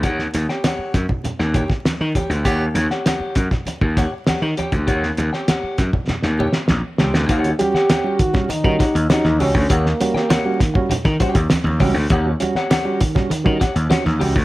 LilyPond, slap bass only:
\new Staff \with { instrumentName = "Slap bass" } { \clef bass \time 4/4 \key ees \mixolydian \tempo 4 = 100 ees,8 ees,16 r8. fis,16 r8 ees,8 r8 ees16 r16 d,16 | ees,8 ees,16 r8. fis,16 r8 ees,8 r8 ees16 r16 d,16 | ees,8 ees,16 r8. fis,16 r8 ees,8 r16 bes,,16 r16 des,16 d,16 | ees,8 r4. r16 ees16 r16 ees,16 r16 ees,16 des,16 d,16 |
ees,8 r4. r16 ees16 r16 ees,16 r16 ees,16 des,16 d,16 | ees,8 r4. r16 ees16 r16 ees,16 r16 ees,16 des,16 d,16 | }